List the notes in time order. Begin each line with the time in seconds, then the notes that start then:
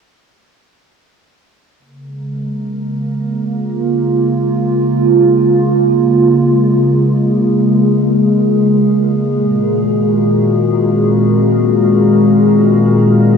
1.75 A#3 A#4
1.79 C#3
2.04 G#3
2.60 A#3
3.34 G#4
3.45 F4
9.34 A#2
9.46 D#3
9.54 F#4
10.59 C4